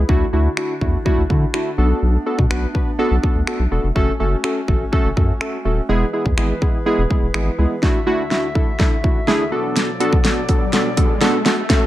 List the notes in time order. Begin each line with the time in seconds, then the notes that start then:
Already playing: E4
0.08 D2 D3 A3 D4 E4 F#4, kick
0.33 D2 A3 D4 E4 F#4
0.57 A3 D4 E4 F#4, finger snap
0.81 E2 A3 D4 E4 F#4, kick
1.05 A3 D4 E4 F#4, kick
1.18 D2
1.29 D3 A3 D4 E4 F#4, kick
1.54 A3 D4 E4 F#4, finger snap
1.78 B1 A3 B3 D4 F#4 A4
2.02 B1
2.26 B3 D4 F#4 A4
2.39 B2, kick
2.50 B1 B3 D4 F#4 B4, finger snap
2.74 B3 D4 F#4 B4, kick
2.99 B3 D4 F#4 A4
3.11 B1
3.23 B3 D4 F#4 A4, kick
3.36 D2
3.47 B3 D4 F#4 A4, finger snap
3.59 B1
3.71 E1 B3 D4 F#4 A4
3.84 F1
3.95 F#1 A3 C#4 F#4 A4, kick
4.20 F#1 A3 C#4 F#4 A4
4.44 A3 C#4 F#4 A4, finger snap
4.68 A1 A3 C#4 F#4 A4, kick
4.92 A3 C#4 F#4 A4, kick
5.05 F#1
5.16 F#2 A3 C#4 F#4 A4, kick
5.41 A3 C#4 F#4 A4, finger snap
5.65 D#1 A3 C#4 F#4 A4
5.89 E1 E3 G#3 B3 E4 G#4 B4
6.13 G#3 B3 E4 G#4
6.26 E2, kick
6.37 G#1 G#3 B3 E4 G#4, finger snap
6.62 G#3 B3 E4 G#4, kick
6.86 G#3 B3 E4 G#4
6.98 E1
7.10 G#3 B3 E4 G#4, kick
7.22 E1
7.34 G#1 G#3 B3 E4 G#4, finger snap
7.58 C#2 G#3 B3 E4 G#4
7.82 D2 D3 A3 D4 E4 F#4 E5, kick, snare, riser
8.06 A3 D4 E4 F#4
8.31 A3 D4 E4 F#4, snare
8.55 A3 D4 E4 A4, kick
8.79 A3 D4 E4 A4, kick, snare
9.03 A3 D4 E4 F#4, kick
9.27 A3 D4 E4 G#4, snare
9.52 B2 F#3 B3 D4 F#4 A4 D5
9.76 snare, closed hi-hat
10.00 B3 D4 F#4 A4, closed hi-hat
10.13 kick
10.24 B3 D4 F#4 A4, snare, closed hi-hat
10.48 B3 D4 F#4 A4, kick, closed hi-hat
10.73 B3 D4 F#4 A4, snare, closed hi-hat
10.97 B3 D4 F#4 A4, kick, closed hi-hat
11.21 B3 D4 F#4 A4, snare, closed hi-hat
11.45 B3 D4 F#4 A4, snare, closed hi-hat
11.69 F#2 F#3 A3 C#4 F#4 A4 C#5, kick, snare, closed hi-hat